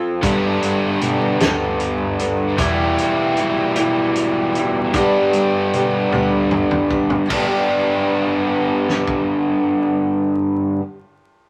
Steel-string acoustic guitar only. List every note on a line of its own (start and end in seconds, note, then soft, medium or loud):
0.00 0.24 C4 soft
0.00 0.24 F4 soft
0.00 0.23 A4 soft
0.24 1.00 G3 medium
0.24 1.02 B3 medium
0.24 1.02 D4 medium
0.24 1.02 A4 medium
1.01 1.40 G3 medium
1.01 1.41 B3 medium
1.01 1.41 D4 medium
1.01 1.40 A4 medium
1.41 2.22 G3 soft
1.41 2.21 B3 medium
1.41 2.19 D4 medium
1.41 2.18 A4 medium
2.19 2.60 B3 soft
2.19 2.59 D4 medium
2.19 2.58 A4 soft
2.59 3.37 E2 medium
2.59 3.37 B2 medium
2.59 3.37 E3 medium
2.59 3.39 G3 medium
2.59 3.38 E4 medium
2.59 3.40 G4 medium
3.38 3.77 E3 medium
3.38 3.77 G3 medium
3.38 3.77 E4 medium
3.38 3.76 G4 medium
3.77 4.56 E2 medium
3.77 4.56 B2 medium
3.77 4.56 E3 medium
3.77 4.58 G3 medium
3.77 4.56 E4 medium
3.77 4.56 G4 medium
4.57 4.96 E3 soft
4.57 4.95 G3 soft
4.57 4.96 E4 soft
4.57 4.95 G4 soft
4.95 5.74 G2 medium
4.95 5.74 D3 medium
4.95 5.73 G3 medium
4.95 5.74 B3 medium
4.95 5.74 D4 medium
4.95 5.75 G4 medium
5.74 6.13 G3 medium
5.74 6.12 B3 medium
5.74 6.12 D4 medium
5.74 6.12 G4 medium
6.13 6.92 G2 soft
6.13 6.92 D3 medium
6.13 6.92 G3 soft
6.13 6.92 B3 medium
6.13 6.91 D4 medium
6.13 6.91 G4 medium
6.92 7.32 G3 soft
6.92 7.31 B3 soft
6.92 7.31 D4 soft
6.92 7.31 G4 soft
7.26 10.76 G2 medium
7.31 10.81 D3 medium
7.31 10.85 G3 medium
7.39 10.89 B3 medium
7.39 10.93 D4 medium
7.46 10.96 G4 medium